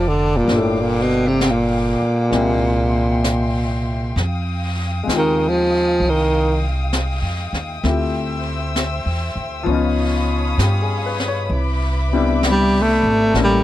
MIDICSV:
0, 0, Header, 1, 7, 480
1, 0, Start_track
1, 0, Key_signature, 0, "major"
1, 0, Tempo, 917431
1, 256, Time_signature, 4, 2, 24, 8
1, 7134, End_track
2, 0, Start_track
2, 0, Title_t, "String section"
2, 0, Program_c, 0, 48
2, 0, Note_on_c, 0, 74, 61
2, 0, Note_on_c, 0, 81, 54
2, 0, Note_on_c, 0, 86, 67
2, 238, Note_off_c, 0, 81, 0
2, 240, Note_off_c, 0, 74, 0
2, 254, Note_on_c, 0, 79, 57
2, 257, Note_on_c, 0, 77, 54
2, 1197, Note_off_c, 0, 86, 0
2, 1206, Note_off_c, 0, 79, 0
2, 1208, Note_off_c, 0, 77, 0
2, 1219, Note_on_c, 0, 76, 48
2, 1220, Note_on_c, 0, 79, 57
2, 1223, Note_on_c, 0, 84, 63
2, 2171, Note_off_c, 0, 79, 0
2, 2172, Note_on_c, 0, 87, 62
2, 2173, Note_off_c, 0, 76, 0
2, 2175, Note_off_c, 0, 84, 0
2, 2175, Note_on_c, 0, 77, 58
2, 2177, Note_on_c, 0, 79, 52
2, 4081, Note_off_c, 0, 87, 0
2, 4082, Note_off_c, 0, 77, 0
2, 4098, Note_on_c, 0, 88, 67
2, 4099, Note_on_c, 0, 72, 60
2, 4105, Note_on_c, 0, 76, 56
2, 5042, Note_off_c, 0, 79, 0
2, 5048, Note_on_c, 0, 87, 74
2, 5051, Note_off_c, 0, 88, 0
2, 5052, Note_off_c, 0, 72, 0
2, 5052, Note_on_c, 0, 73, 66
2, 5052, Note_on_c, 0, 83, 62
2, 5053, Note_on_c, 0, 77, 59
2, 5055, Note_off_c, 0, 76, 0
2, 6004, Note_off_c, 0, 87, 0
2, 6007, Note_off_c, 0, 73, 0
2, 6007, Note_off_c, 0, 77, 0
2, 6007, Note_off_c, 0, 83, 0
2, 6014, Note_on_c, 0, 76, 59
2, 6014, Note_on_c, 0, 83, 63
2, 6017, Note_on_c, 0, 86, 72
2, 6018, Note_on_c, 0, 71, 67
2, 6965, Note_on_c, 0, 79, 54
2, 6965, Note_on_c, 0, 85, 71
2, 6966, Note_off_c, 0, 76, 0
2, 6966, Note_off_c, 0, 83, 0
2, 6966, Note_on_c, 0, 69, 67
2, 6966, Note_on_c, 0, 82, 55
2, 6968, Note_off_c, 0, 71, 0
2, 6968, Note_off_c, 0, 86, 0
2, 7134, Note_off_c, 0, 69, 0
2, 7134, Note_off_c, 0, 79, 0
2, 7134, Note_off_c, 0, 82, 0
2, 7134, Note_off_c, 0, 85, 0
2, 7134, End_track
3, 0, Start_track
3, 0, Title_t, "Grand piano"
3, 0, Program_c, 1, 0
3, 0, Control_c, 1, 64, 127
3, 0, Note_on_c, 1, 53, 42
3, 0, Note_on_c, 1, 58, 41
3, 0, Note_on_c, 1, 60, 37
3, 0, Note_on_c, 1, 62, 36
3, 0, Note_on_c, 1, 64, 35
3, 0, Note_on_c, 1, 69, 47
3, 0, Note_on_c, 1, 70, 41
3, 229, Note_on_c, 1, 55, 39
3, 238, Note_off_c, 1, 58, 0
3, 244, Note_off_c, 1, 53, 0
3, 246, Note_on_c, 1, 58, 36
3, 252, Note_off_c, 1, 60, 0
3, 255, Note_off_c, 1, 62, 0
3, 257, Note_off_c, 1, 64, 0
3, 261, Note_off_c, 1, 70, 0
3, 263, Note_on_c, 1, 62, 35
3, 264, Control_c, 1, 64, 0
3, 273, Note_off_c, 1, 69, 0
3, 274, Note_on_c, 1, 65, 37
3, 290, Note_on_c, 1, 69, 41
3, 362, Control_c, 1, 64, 127
3, 1199, Note_off_c, 1, 58, 0
3, 1204, Note_off_c, 1, 55, 0
3, 1205, Note_on_c, 1, 56, 49
3, 1207, Note_on_c, 1, 58, 44
3, 1217, Note_on_c, 1, 60, 41
3, 1221, Note_off_c, 1, 62, 0
3, 1222, Note_on_c, 1, 64, 41
3, 1224, Control_c, 1, 64, 0
3, 1226, Note_off_c, 1, 65, 0
3, 1227, Note_on_c, 1, 67, 48
3, 1234, Note_off_c, 1, 69, 0
3, 1330, Control_c, 1, 64, 127
3, 2175, Note_off_c, 1, 56, 0
3, 2176, Note_off_c, 1, 58, 0
3, 2181, Note_off_c, 1, 60, 0
3, 2183, Note_off_c, 1, 64, 0
3, 2186, Note_off_c, 1, 67, 0
3, 2189, Control_c, 1, 64, 0
3, 2293, Control_c, 1, 64, 127
3, 2634, Note_on_c, 1, 56, 43
3, 2649, Note_on_c, 1, 60, 39
3, 2659, Note_on_c, 1, 63, 35
3, 2676, Note_on_c, 1, 65, 42
3, 2691, Note_on_c, 1, 67, 41
3, 4091, Note_off_c, 1, 56, 0
3, 4098, Note_off_c, 1, 60, 0
3, 4100, Note_on_c, 1, 57, 34
3, 4103, Note_off_c, 1, 63, 0
3, 4105, Note_on_c, 1, 60, 35
3, 4107, Note_off_c, 1, 65, 0
3, 4108, Note_on_c, 1, 64, 39
3, 4112, Control_c, 1, 64, 0
3, 4115, Note_on_c, 1, 65, 33
3, 4117, Note_off_c, 1, 67, 0
3, 4125, Note_on_c, 1, 67, 43
3, 4208, Control_c, 1, 64, 127
3, 5040, Note_on_c, 1, 53, 52
3, 5053, Note_on_c, 1, 59, 44
3, 5062, Note_off_c, 1, 57, 0
3, 5065, Note_off_c, 1, 60, 0
3, 5066, Note_off_c, 1, 64, 0
3, 5067, Note_on_c, 1, 61, 49
3, 5070, Note_off_c, 1, 65, 0
3, 5071, Control_c, 1, 64, 0
3, 5075, Note_off_c, 1, 67, 0
3, 5080, Note_on_c, 1, 63, 49
3, 5098, Note_on_c, 1, 65, 56
3, 5163, Control_c, 1, 64, 127
3, 5543, Note_on_c, 1, 67, 44
3, 5661, Note_on_c, 1, 68, 47
3, 5766, Note_off_c, 1, 67, 0
3, 5787, Note_on_c, 1, 71, 49
3, 5867, Note_off_c, 1, 68, 0
3, 5902, Note_on_c, 1, 73, 55
3, 5933, Note_off_c, 1, 71, 0
3, 6010, Note_off_c, 1, 53, 0
3, 6017, Note_off_c, 1, 59, 0
3, 6024, Note_off_c, 1, 61, 0
3, 6030, Note_off_c, 1, 63, 0
3, 6030, Control_c, 1, 64, 0
3, 6039, Note_off_c, 1, 65, 0
3, 6069, Note_off_c, 1, 73, 0
3, 6120, Control_c, 1, 64, 127
3, 6346, Note_on_c, 1, 55, 55
3, 6346, Note_on_c, 1, 59, 52
3, 6348, Note_on_c, 1, 60, 49
3, 6354, Note_on_c, 1, 62, 51
3, 6354, Note_on_c, 1, 64, 63
3, 6975, Note_off_c, 1, 55, 0
3, 6982, Note_off_c, 1, 59, 0
3, 6983, Note_off_c, 1, 60, 0
3, 6983, Note_on_c, 1, 55, 57
3, 6985, Note_off_c, 1, 64, 0
3, 6986, Note_off_c, 1, 62, 0
3, 6986, Note_on_c, 1, 57, 54
3, 6987, Control_c, 1, 64, 0
3, 6988, Note_on_c, 1, 58, 52
3, 6991, Note_on_c, 1, 61, 54
3, 6992, Note_on_c, 1, 64, 62
3, 7094, Control_c, 1, 64, 127
3, 7134, Note_off_c, 1, 55, 0
3, 7134, Note_off_c, 1, 57, 0
3, 7134, Note_off_c, 1, 58, 0
3, 7134, Note_off_c, 1, 61, 0
3, 7134, Note_off_c, 1, 64, 0
3, 7134, End_track
4, 0, Start_track
4, 0, Title_t, "Baritone saxophone"
4, 0, Program_c, 2, 67
4, 42, Note_on_c, 2, 50, 84
4, 192, Note_on_c, 2, 46, 66
4, 200, Note_off_c, 2, 50, 0
4, 310, Note_on_c, 2, 45, 57
4, 317, Note_off_c, 2, 46, 0
4, 424, Note_on_c, 2, 46, 66
4, 431, Note_off_c, 2, 45, 0
4, 535, Note_on_c, 2, 47, 74
4, 543, Note_off_c, 2, 46, 0
4, 667, Note_on_c, 2, 48, 75
4, 675, Note_off_c, 2, 47, 0
4, 786, Note_on_c, 2, 46, 68
4, 794, Note_off_c, 2, 48, 0
4, 2206, Note_off_c, 2, 46, 0
4, 2708, Note_on_c, 2, 51, 68
4, 2870, Note_on_c, 2, 53, 75
4, 2878, Note_off_c, 2, 51, 0
4, 3190, Note_on_c, 2, 51, 60
4, 3198, Note_off_c, 2, 53, 0
4, 3488, Note_off_c, 2, 51, 0
4, 6545, Note_on_c, 2, 55, 86
4, 6707, Note_on_c, 2, 57, 80
4, 6714, Note_off_c, 2, 55, 0
4, 7003, Note_off_c, 2, 57, 0
4, 7030, Note_on_c, 2, 55, 76
4, 7134, Note_off_c, 2, 55, 0
4, 7134, End_track
5, 0, Start_track
5, 0, Title_t, "Upright bass"
5, 0, Program_c, 3, 32
5, 0, Note_on_c, 3, 29, 73
5, 234, Note_off_c, 3, 29, 0
5, 249, Note_on_c, 3, 31, 75
5, 1033, Note_off_c, 3, 31, 0
5, 1211, Note_on_c, 3, 36, 67
5, 2157, Note_off_c, 3, 36, 0
5, 2177, Note_on_c, 3, 41, 76
5, 2639, Note_off_c, 3, 41, 0
5, 2656, Note_on_c, 3, 39, 63
5, 3119, Note_off_c, 3, 39, 0
5, 3139, Note_on_c, 3, 36, 72
5, 3762, Note_off_c, 3, 36, 0
5, 3777, Note_on_c, 3, 41, 43
5, 3929, Note_off_c, 3, 41, 0
5, 3938, Note_on_c, 3, 39, 59
5, 4090, Note_off_c, 3, 39, 0
5, 4100, Note_on_c, 3, 38, 82
5, 4722, Note_off_c, 3, 38, 0
5, 4739, Note_on_c, 3, 40, 49
5, 4890, Note_off_c, 3, 40, 0
5, 4895, Note_on_c, 3, 38, 50
5, 5048, Note_off_c, 3, 38, 0
5, 5055, Note_on_c, 3, 37, 71
5, 5518, Note_off_c, 3, 37, 0
5, 5535, Note_on_c, 3, 43, 68
5, 5998, Note_off_c, 3, 43, 0
5, 6014, Note_on_c, 3, 36, 72
5, 6796, Note_off_c, 3, 36, 0
5, 6819, Note_on_c, 3, 32, 57
5, 6967, Note_off_c, 3, 32, 0
5, 6978, Note_on_c, 3, 33, 71
5, 7134, Note_off_c, 3, 33, 0
5, 7134, End_track
6, 0, Start_track
6, 0, Title_t, "Muted upright bass strokes"
6, 1053, Note_on_c, 9, 29, 29
6, 1106, Note_off_c, 9, 29, 0
6, 7134, End_track
7, 0, Start_track
7, 0, Title_t, "Drums"
7, 254, Note_on_c, 9, 25, 33
7, 254, Note_on_c, 9, 38, 24
7, 306, Note_off_c, 9, 38, 0
7, 737, Note_off_c, 9, 25, 0
7, 737, Note_on_c, 9, 25, 31
7, 737, Note_on_c, 9, 38, 42
7, 737, Note_on_c, 9, 44, 44
7, 789, Note_off_c, 9, 38, 0
7, 789, Note_off_c, 9, 44, 0
7, 1215, Note_off_c, 9, 25, 0
7, 1215, Note_on_c, 9, 25, 32
7, 1215, Note_on_c, 9, 38, 27
7, 1268, Note_off_c, 9, 38, 0
7, 1696, Note_off_c, 9, 25, 0
7, 1696, Note_on_c, 9, 25, 32
7, 1696, Note_on_c, 9, 38, 40
7, 1696, Note_on_c, 9, 44, 51
7, 1749, Note_off_c, 9, 38, 0
7, 1749, Note_off_c, 9, 44, 0
7, 2182, Note_off_c, 9, 25, 0
7, 2182, Note_on_c, 9, 25, 36
7, 2182, Note_on_c, 9, 38, 23
7, 2235, Note_off_c, 9, 38, 0
7, 2664, Note_off_c, 9, 25, 0
7, 2664, Note_on_c, 9, 25, 31
7, 2664, Note_on_c, 9, 38, 37
7, 2664, Note_on_c, 9, 44, 44
7, 2716, Note_off_c, 9, 38, 0
7, 2716, Note_off_c, 9, 44, 0
7, 3144, Note_off_c, 9, 25, 0
7, 3144, Note_on_c, 9, 25, 28
7, 3625, Note_off_c, 9, 25, 0
7, 3625, Note_on_c, 9, 25, 35
7, 3625, Note_on_c, 9, 38, 40
7, 3625, Note_on_c, 9, 44, 50
7, 3677, Note_off_c, 9, 38, 0
7, 3677, Note_off_c, 9, 44, 0
7, 3945, Note_on_c, 9, 38, 21
7, 3997, Note_off_c, 9, 38, 0
7, 4104, Note_off_c, 9, 25, 0
7, 4104, Note_on_c, 9, 25, 27
7, 4104, Note_on_c, 9, 38, 25
7, 4156, Note_off_c, 9, 38, 0
7, 4582, Note_off_c, 9, 25, 0
7, 4582, Note_on_c, 9, 25, 29
7, 4582, Note_on_c, 9, 38, 40
7, 4582, Note_on_c, 9, 44, 49
7, 4635, Note_off_c, 9, 38, 0
7, 4635, Note_off_c, 9, 44, 0
7, 5062, Note_off_c, 9, 25, 0
7, 5062, Note_on_c, 9, 25, 31
7, 5541, Note_off_c, 9, 25, 0
7, 5541, Note_on_c, 9, 25, 35
7, 5541, Note_on_c, 9, 38, 40
7, 5541, Note_on_c, 9, 44, 44
7, 5593, Note_off_c, 9, 38, 0
7, 5593, Note_off_c, 9, 44, 0
7, 5858, Note_on_c, 9, 38, 23
7, 5910, Note_off_c, 9, 38, 0
7, 6022, Note_off_c, 9, 25, 0
7, 6022, Note_on_c, 9, 25, 33
7, 6504, Note_off_c, 9, 25, 0
7, 6504, Note_on_c, 9, 25, 39
7, 6504, Note_on_c, 9, 38, 45
7, 6504, Note_on_c, 9, 44, 47
7, 6556, Note_off_c, 9, 38, 0
7, 6556, Note_off_c, 9, 44, 0
7, 6982, Note_off_c, 9, 25, 0
7, 6982, Note_on_c, 9, 25, 39
7, 6982, Note_on_c, 9, 38, 27
7, 7035, Note_off_c, 9, 38, 0
7, 7134, Note_off_c, 9, 25, 0
7, 7134, End_track
0, 0, End_of_file